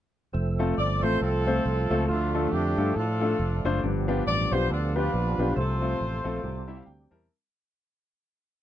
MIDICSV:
0, 0, Header, 1, 5, 480
1, 0, Start_track
1, 0, Key_signature, -1, "major"
1, 0, Tempo, 434468
1, 386, Time_signature, 4, 2, 24, 8
1, 9524, End_track
2, 0, Start_track
2, 0, Title_t, "Horn section"
2, 0, Program_c, 0, 61
2, 859, Note_on_c, 0, 74, 85
2, 1119, Note_off_c, 0, 74, 0
2, 1132, Note_on_c, 0, 72, 83
2, 1332, Note_on_c, 0, 69, 90
2, 1342, Note_off_c, 0, 72, 0
2, 1345, Note_on_c, 0, 60, 64
2, 1345, Note_on_c, 0, 65, 61
2, 2257, Note_off_c, 0, 69, 0
2, 2264, Note_off_c, 0, 60, 0
2, 2264, Note_off_c, 0, 65, 0
2, 2294, Note_on_c, 0, 65, 84
2, 2318, Note_on_c, 0, 57, 61
2, 2321, Note_on_c, 0, 62, 59
2, 2748, Note_off_c, 0, 65, 0
2, 2767, Note_on_c, 0, 67, 80
2, 2779, Note_off_c, 0, 62, 0
2, 2792, Note_on_c, 0, 62, 55
2, 3231, Note_off_c, 0, 57, 0
2, 3259, Note_off_c, 0, 67, 0
2, 3259, Note_on_c, 0, 69, 83
2, 3265, Note_off_c, 0, 62, 0
2, 3279, Note_on_c, 0, 62, 57
2, 3283, Note_on_c, 0, 65, 60
2, 4022, Note_off_c, 0, 69, 0
2, 4193, Note_off_c, 0, 62, 0
2, 4195, Note_off_c, 0, 65, 0
2, 4718, Note_on_c, 0, 74, 99
2, 4972, Note_off_c, 0, 74, 0
2, 4996, Note_on_c, 0, 72, 87
2, 5198, Note_off_c, 0, 72, 0
2, 5201, Note_on_c, 0, 69, 79
2, 5206, Note_on_c, 0, 62, 60
2, 5217, Note_on_c, 0, 65, 64
2, 5471, Note_off_c, 0, 65, 0
2, 5473, Note_off_c, 0, 62, 0
2, 5473, Note_off_c, 0, 69, 0
2, 5475, Note_on_c, 0, 71, 88
2, 5484, Note_on_c, 0, 65, 60
2, 5486, Note_on_c, 0, 62, 62
2, 6117, Note_off_c, 0, 65, 0
2, 6118, Note_off_c, 0, 62, 0
2, 6139, Note_on_c, 0, 72, 87
2, 6157, Note_off_c, 0, 71, 0
2, 6160, Note_on_c, 0, 65, 60
2, 6162, Note_on_c, 0, 69, 59
2, 7540, Note_off_c, 0, 72, 0
2, 7551, Note_off_c, 0, 65, 0
2, 7552, Note_off_c, 0, 69, 0
2, 9524, End_track
3, 0, Start_track
3, 0, Title_t, "Grand piano"
3, 0, Program_c, 1, 0
3, 653, Note_on_c, 1, 57, 73
3, 658, Note_on_c, 1, 60, 65
3, 659, Note_on_c, 1, 65, 65
3, 663, Note_on_c, 1, 69, 78
3, 803, Note_off_c, 1, 57, 0
3, 806, Note_off_c, 1, 60, 0
3, 807, Note_off_c, 1, 65, 0
3, 808, Note_off_c, 1, 69, 0
3, 1135, Note_on_c, 1, 60, 61
3, 1137, Note_on_c, 1, 57, 58
3, 1140, Note_on_c, 1, 65, 55
3, 1142, Note_on_c, 1, 69, 67
3, 1285, Note_off_c, 1, 60, 0
3, 1286, Note_off_c, 1, 57, 0
3, 1287, Note_off_c, 1, 65, 0
3, 1289, Note_off_c, 1, 69, 0
3, 1622, Note_on_c, 1, 60, 58
3, 1624, Note_on_c, 1, 57, 65
3, 1626, Note_on_c, 1, 65, 59
3, 1628, Note_on_c, 1, 72, 73
3, 1769, Note_off_c, 1, 60, 0
3, 1770, Note_off_c, 1, 57, 0
3, 1771, Note_off_c, 1, 65, 0
3, 1772, Note_off_c, 1, 72, 0
3, 2102, Note_on_c, 1, 57, 77
3, 2106, Note_on_c, 1, 60, 62
3, 2110, Note_on_c, 1, 65, 65
3, 2110, Note_on_c, 1, 69, 81
3, 2249, Note_off_c, 1, 57, 0
3, 2251, Note_off_c, 1, 60, 0
3, 2253, Note_off_c, 1, 65, 0
3, 2253, Note_off_c, 1, 69, 0
3, 2309, Note_on_c, 1, 50, 49
3, 2586, Note_on_c, 1, 62, 58
3, 2587, Note_on_c, 1, 57, 64
3, 2591, Note_on_c, 1, 65, 58
3, 2593, Note_on_c, 1, 69, 71
3, 2732, Note_off_c, 1, 62, 0
3, 2733, Note_off_c, 1, 57, 0
3, 2734, Note_off_c, 1, 65, 0
3, 2735, Note_off_c, 1, 69, 0
3, 3021, Note_off_c, 1, 50, 0
3, 3070, Note_on_c, 1, 57, 65
3, 3072, Note_on_c, 1, 62, 57
3, 3074, Note_on_c, 1, 65, 61
3, 3074, Note_on_c, 1, 69, 71
3, 3215, Note_off_c, 1, 57, 0
3, 3216, Note_off_c, 1, 62, 0
3, 3216, Note_off_c, 1, 69, 0
3, 3217, Note_off_c, 1, 65, 0
3, 3545, Note_on_c, 1, 57, 61
3, 3546, Note_on_c, 1, 62, 60
3, 3549, Note_on_c, 1, 69, 74
3, 3551, Note_on_c, 1, 65, 57
3, 3693, Note_off_c, 1, 57, 0
3, 3693, Note_off_c, 1, 62, 0
3, 3695, Note_off_c, 1, 69, 0
3, 3696, Note_off_c, 1, 65, 0
3, 4030, Note_on_c, 1, 57, 72
3, 4034, Note_on_c, 1, 62, 69
3, 4034, Note_on_c, 1, 65, 70
3, 4038, Note_on_c, 1, 72, 79
3, 4176, Note_off_c, 1, 57, 0
3, 4177, Note_off_c, 1, 62, 0
3, 4178, Note_off_c, 1, 65, 0
3, 4179, Note_off_c, 1, 72, 0
3, 4239, Note_on_c, 1, 43, 66
3, 4507, Note_on_c, 1, 59, 77
3, 4508, Note_on_c, 1, 65, 66
3, 4509, Note_on_c, 1, 62, 75
3, 4515, Note_on_c, 1, 67, 81
3, 4654, Note_off_c, 1, 59, 0
3, 4655, Note_off_c, 1, 65, 0
3, 4656, Note_off_c, 1, 62, 0
3, 4658, Note_off_c, 1, 67, 0
3, 4948, Note_off_c, 1, 43, 0
3, 4995, Note_on_c, 1, 59, 64
3, 4998, Note_on_c, 1, 62, 61
3, 4998, Note_on_c, 1, 65, 64
3, 5004, Note_on_c, 1, 67, 69
3, 5139, Note_off_c, 1, 59, 0
3, 5140, Note_off_c, 1, 62, 0
3, 5140, Note_off_c, 1, 65, 0
3, 5143, Note_off_c, 1, 67, 0
3, 5476, Note_on_c, 1, 59, 68
3, 5477, Note_on_c, 1, 62, 58
3, 5479, Note_on_c, 1, 67, 73
3, 5480, Note_on_c, 1, 65, 59
3, 5620, Note_off_c, 1, 59, 0
3, 5620, Note_off_c, 1, 62, 0
3, 5621, Note_off_c, 1, 67, 0
3, 5622, Note_off_c, 1, 65, 0
3, 5953, Note_on_c, 1, 59, 61
3, 5957, Note_on_c, 1, 65, 52
3, 5958, Note_on_c, 1, 62, 59
3, 5961, Note_on_c, 1, 67, 73
3, 6098, Note_off_c, 1, 59, 0
3, 6100, Note_off_c, 1, 62, 0
3, 6100, Note_off_c, 1, 65, 0
3, 6102, Note_off_c, 1, 67, 0
3, 6153, Note_on_c, 1, 48, 50
3, 6423, Note_on_c, 1, 57, 61
3, 6428, Note_on_c, 1, 60, 55
3, 6429, Note_on_c, 1, 65, 58
3, 6433, Note_on_c, 1, 69, 65
3, 6572, Note_off_c, 1, 57, 0
3, 6575, Note_off_c, 1, 60, 0
3, 6576, Note_off_c, 1, 65, 0
3, 6578, Note_off_c, 1, 69, 0
3, 6864, Note_off_c, 1, 48, 0
3, 6895, Note_on_c, 1, 57, 74
3, 6898, Note_on_c, 1, 60, 67
3, 6901, Note_on_c, 1, 65, 69
3, 6906, Note_on_c, 1, 69, 81
3, 7048, Note_off_c, 1, 57, 0
3, 7050, Note_off_c, 1, 60, 0
3, 7051, Note_off_c, 1, 65, 0
3, 7054, Note_off_c, 1, 69, 0
3, 7107, Note_on_c, 1, 48, 61
3, 7373, Note_on_c, 1, 55, 70
3, 7376, Note_on_c, 1, 76, 60
3, 7378, Note_on_c, 1, 60, 66
3, 7382, Note_on_c, 1, 64, 67
3, 7382, Note_on_c, 1, 67, 76
3, 7477, Note_off_c, 1, 76, 0
3, 7480, Note_on_c, 1, 77, 58
3, 7527, Note_off_c, 1, 55, 0
3, 7529, Note_off_c, 1, 60, 0
3, 7531, Note_off_c, 1, 64, 0
3, 7531, Note_off_c, 1, 67, 0
3, 7579, Note_on_c, 1, 79, 59
3, 7580, Note_off_c, 1, 77, 0
3, 7819, Note_off_c, 1, 48, 0
3, 7840, Note_off_c, 1, 79, 0
3, 7852, Note_on_c, 1, 55, 72
3, 7854, Note_on_c, 1, 60, 64
3, 7855, Note_on_c, 1, 81, 56
3, 7859, Note_on_c, 1, 64, 65
3, 7862, Note_on_c, 1, 70, 82
3, 8005, Note_off_c, 1, 55, 0
3, 8006, Note_off_c, 1, 60, 0
3, 8009, Note_off_c, 1, 64, 0
3, 8010, Note_off_c, 1, 70, 0
3, 8050, Note_off_c, 1, 81, 0
3, 9524, End_track
4, 0, Start_track
4, 0, Title_t, "Tonewheel organ"
4, 0, Program_c, 2, 16
4, 366, Note_on_c, 2, 60, 57
4, 369, Note_on_c, 2, 53, 60
4, 370, Note_on_c, 2, 69, 66
4, 377, Note_on_c, 2, 57, 59
4, 2260, Note_off_c, 2, 60, 0
4, 2262, Note_off_c, 2, 53, 0
4, 2262, Note_off_c, 2, 69, 0
4, 2266, Note_off_c, 2, 57, 0
4, 2290, Note_on_c, 2, 57, 49
4, 2295, Note_on_c, 2, 62, 46
4, 2298, Note_on_c, 2, 53, 48
4, 2301, Note_on_c, 2, 69, 57
4, 4185, Note_off_c, 2, 57, 0
4, 4187, Note_off_c, 2, 62, 0
4, 4189, Note_off_c, 2, 53, 0
4, 4190, Note_off_c, 2, 69, 0
4, 4222, Note_on_c, 2, 62, 60
4, 4227, Note_on_c, 2, 53, 60
4, 4227, Note_on_c, 2, 59, 62
4, 4228, Note_on_c, 2, 67, 69
4, 6110, Note_off_c, 2, 62, 0
4, 6113, Note_off_c, 2, 53, 0
4, 6113, Note_off_c, 2, 59, 0
4, 6113, Note_off_c, 2, 67, 0
4, 6139, Note_on_c, 2, 60, 49
4, 6143, Note_on_c, 2, 57, 49
4, 6144, Note_on_c, 2, 53, 51
4, 6146, Note_on_c, 2, 69, 61
4, 7086, Note_off_c, 2, 60, 0
4, 7088, Note_off_c, 2, 57, 0
4, 7089, Note_off_c, 2, 53, 0
4, 7090, Note_off_c, 2, 69, 0
4, 7104, Note_on_c, 2, 51, 53
4, 7104, Note_on_c, 2, 55, 60
4, 7107, Note_on_c, 2, 67, 82
4, 7112, Note_on_c, 2, 60, 62
4, 7157, Note_on_c, 2, 48, 71
4, 7175, Note_off_c, 2, 51, 0
4, 8047, Note_off_c, 2, 55, 0
4, 8048, Note_off_c, 2, 67, 0
4, 8051, Note_off_c, 2, 60, 0
4, 8074, Note_off_c, 2, 48, 0
4, 9524, End_track
5, 0, Start_track
5, 0, Title_t, "Fingered electric bass"
5, 0, Program_c, 3, 33
5, 380, Note_on_c, 3, 29, 83
5, 790, Note_off_c, 3, 29, 0
5, 860, Note_on_c, 3, 31, 82
5, 1097, Note_off_c, 3, 31, 0
5, 1133, Note_on_c, 3, 33, 80
5, 1311, Note_off_c, 3, 33, 0
5, 1338, Note_on_c, 3, 36, 78
5, 1751, Note_off_c, 3, 36, 0
5, 1827, Note_on_c, 3, 36, 87
5, 2062, Note_off_c, 3, 36, 0
5, 2103, Note_on_c, 3, 37, 80
5, 2277, Note_off_c, 3, 37, 0
5, 2310, Note_on_c, 3, 38, 86
5, 2718, Note_off_c, 3, 38, 0
5, 2788, Note_on_c, 3, 41, 71
5, 3023, Note_off_c, 3, 41, 0
5, 3065, Note_on_c, 3, 43, 83
5, 3240, Note_off_c, 3, 43, 0
5, 3270, Note_on_c, 3, 45, 75
5, 3679, Note_off_c, 3, 45, 0
5, 3749, Note_on_c, 3, 29, 83
5, 3985, Note_off_c, 3, 29, 0
5, 4027, Note_on_c, 3, 30, 77
5, 4202, Note_off_c, 3, 30, 0
5, 4238, Note_on_c, 3, 31, 84
5, 4645, Note_off_c, 3, 31, 0
5, 4715, Note_on_c, 3, 33, 72
5, 4949, Note_off_c, 3, 33, 0
5, 4991, Note_on_c, 3, 35, 76
5, 5164, Note_off_c, 3, 35, 0
5, 5196, Note_on_c, 3, 38, 79
5, 5604, Note_off_c, 3, 38, 0
5, 5676, Note_on_c, 3, 34, 74
5, 5909, Note_off_c, 3, 34, 0
5, 5947, Note_on_c, 3, 35, 65
5, 6122, Note_off_c, 3, 35, 0
5, 6150, Note_on_c, 3, 36, 89
5, 6560, Note_off_c, 3, 36, 0
5, 6636, Note_on_c, 3, 33, 76
5, 6869, Note_off_c, 3, 33, 0
5, 6906, Note_on_c, 3, 34, 76
5, 7081, Note_off_c, 3, 34, 0
5, 7109, Note_on_c, 3, 36, 81
5, 7518, Note_off_c, 3, 36, 0
5, 7590, Note_on_c, 3, 38, 82
5, 7825, Note_off_c, 3, 38, 0
5, 7860, Note_on_c, 3, 40, 67
5, 8036, Note_off_c, 3, 40, 0
5, 9524, End_track
0, 0, End_of_file